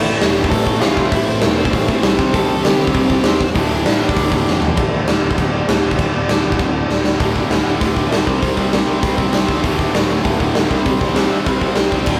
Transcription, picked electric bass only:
0.05 A1
0.21 E1
0.51 A1
0.67 A1
0.80 C2
1.12 A1
1.28 A1
1.42 E1
1.73 A1
1.89 A1
2.03 C2
2.19 C2
2.34 C2
2.48 C2
2.65 G1
2.95 C2
3.10 C2
3.24 E2
3.55 D1
3.69 D1
3.85 A1
4.17 D1
4.32 D1
4.48 F1
4.78 D1
4.92 D1
5.07 D1
5.23 D1
5.38 D1
5.68 D1
5.84 D1
5.99 D1
6.14 D1
6.29 D1
6.45 D1
6.59 D1
6.91 D1
7.06 D1
7.20 D1
7.50 D1
7.65 D1
7.81 D1
7.96 D1
8.10 D1
8.27 C2
8.42 C2
8.58 C2
8.71 C2
8.87 C2
9.03 C2
9.18 C2
9.32 C2
9.49 C#2
9.64 D1
9.93 D1
10.08 D1
10.25 D1
10.40 D1
10.54 D1
10.71 C2
10.86 C2
11.01 C2
11.15 C2
11.29 C2
11.47 C2
11.62 C2
11.76 C2
11.92 C#2
12.07 D1

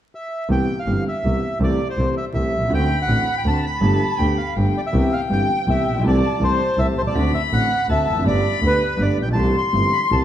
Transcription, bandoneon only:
0.15 E5
0.52 G5
0.79 F5
1.08 E5
1.64 D5
1.90 C5
2.17 E5
2.34 E5
2.74 G5
3.02 F#5
3.38 G5
3.48 A5
3.67 B5
4.78 D5
4.86 E5
5.13 F5
5.33 G5
5.70 E5
6.07 D5
6.44 C5
6.79 E5
6.98 C5
7.07 D5
7.35 E5
7.53 F#5
7.91 E5
8.27 D5
8.67 B4
9.02 D5
9.22 G5
9.33 A5
9.58 C6
9.93 B5
10.12 A5

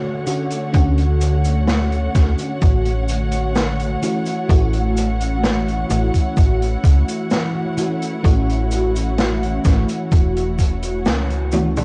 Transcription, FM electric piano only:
Already playing: D3 A3 C#4 F#4
0.26 D3 A3 C#4 F#4
0.72 D3 A3 C#4 F#4
2.14 D3 A3 C#4 F#4
4.02 E3 A3 C#4 F#4
4.48 E3 A3 C#4 F#4
5.89 E3 A3 C#4 F#4
7.77 E3 A3 C#4 F#4
8.23 E3 A3 C#4 F#4
9.65 E3 A3 C#4 F#4
11.52 E3 A3 C#4 F#4

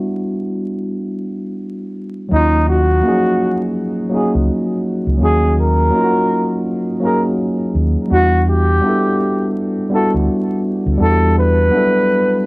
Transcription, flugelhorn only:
2.33 D#4
2.69 F#4
4.14 G#4
5.24 G#4
5.60 A#4
7.04 A#4
8.12 F#4
8.49 G4
9.94 A4
11.02 A4
11.38 B4

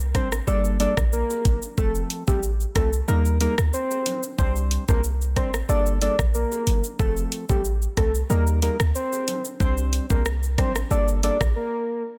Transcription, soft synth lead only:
0.15 C5
0.47 D5
0.80 D5
1.13 A#4
1.78 A4
2.28 G4
2.76 A4
3.08 A#4
3.41 A#4
3.73 C5
4.39 C5
4.89 A#4
5.37 C5
5.69 D5
6.02 D5
6.34 A#4
7.00 A4
7.50 G4
7.97 A4
8.30 A#4
8.63 A#4
8.95 C5
9.60 C5
10.10 A#4
10.58 C5
10.91 D5
11.23 D5
11.56 A#4

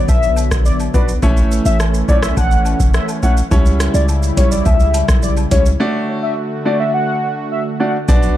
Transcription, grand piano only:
0.94 B3 D4 F#4 D5
1.23 A3 C#4 E4 C#5
2.08 A3 C#4 E4 C#5
3.23 A3 C#4 E4 C#5
3.51 G3 C#4 E4 C#5
4.37 G3 C#4 E4 C#5
5.51 G3 C#4 E4 C#5
5.80 A3 D4 F#4 D5
6.65 A3 D4 F#4 D5
7.80 A3 D4 F#4 D5
8.08 B3 D4 F#4 D5

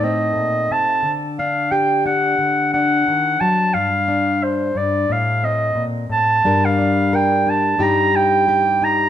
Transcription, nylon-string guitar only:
Already playing: A2 A3 D#4 A4
0.04 C4
0.36 A#2
0.71 C3
1.03 D3
1.39 D4
1.72 G4
2.06 D4
2.39 D3
2.74 D4
3.08 D#3
3.41 F#3
3.74 G2
4.08 D4
4.75 G2
5.09 A2
5.43 C4
5.75 A#2
6.09 A2
6.44 G2 G3 D4 A#4
6.79 D4
7.13 A#4
7.46 D4
7.78 G2 G3 D#4 G4
8.14 D#4
8.48 G4
8.82 D#4

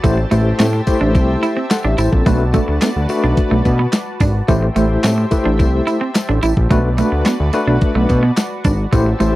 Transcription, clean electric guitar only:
0.04 A3
0.18 muted clean electric guitar stroke
0.31 A3
0.59 C4
0.73 muted clean electric guitar stroke
1.01 D4
1.15 muted clean electric guitar stroke
1.43 E4
1.57 C4
1.71 muted clean electric guitar stroke
1.85 D4
1.98 E4
2.26 A3
2.54 A3
2.68 muted clean electric guitar stroke
2.82 B3
3.10 muted clean electric guitar stroke
3.24 D4
3.51 A3
3.65 muted clean electric guitar stroke
3.79 B3
4.21 D4
4.48 A3
4.63 muted clean electric guitar stroke
4.76 A3
5.04 C4
5.18 muted clean electric guitar stroke
5.45 D4
5.59 muted clean electric guitar stroke
5.87 E4
6.01 C4
6.15 muted clean electric guitar stroke
6.29 D4
6.43 E4
6.71 A3
6.98 A3
7.12 muted clean electric guitar stroke
7.26 B3
7.54 muted clean electric guitar stroke
7.68 D4
7.95 A3
8.09 muted clean electric guitar stroke
8.23 B3
8.65 D4
8.93 A3
9.06 muted clean electric guitar stroke
9.20 A3

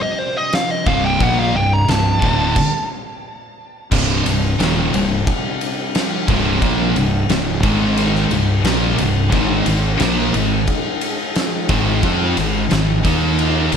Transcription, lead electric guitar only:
0.02 D#5
0.19 C5
0.37 D#5
0.55 F5
0.71 D#5
0.87 F5
1.06 G5
1.23 F#5
1.39 F5
1.56 G5
1.73 A#5
1.90 A5

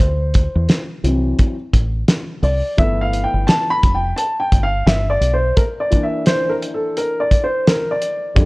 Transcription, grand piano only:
Already playing: C5
1.04 E3 F#3 C4
2.44 D5
2.77 E3 A3 B3 E5
3.01 F5
3.24 G5
3.47 A5
3.70 B5
3.95 G5
4.16 A5
4.40 G5
4.63 F5
4.87 E5
5.10 D5
5.34 C5
5.57 A#4
5.80 D5
5.91 E3 A#3 D4
6.03 E5
6.27 C5
6.49 A#4
6.74 A4
6.98 A#4
7.20 D5
7.44 C5
7.67 A#4
7.91 D5
8.35 G3 A3 D4

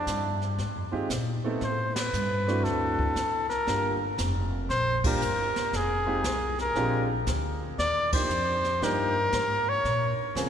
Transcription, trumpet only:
Already playing: D4
1.64 C5
1.95 B4
2.64 A4
3.50 A#4
4.70 C5
5.07 A#4
5.76 G#4
6.61 A#4
7.79 D5
8.14 C5
8.84 A#4
9.69 C#5

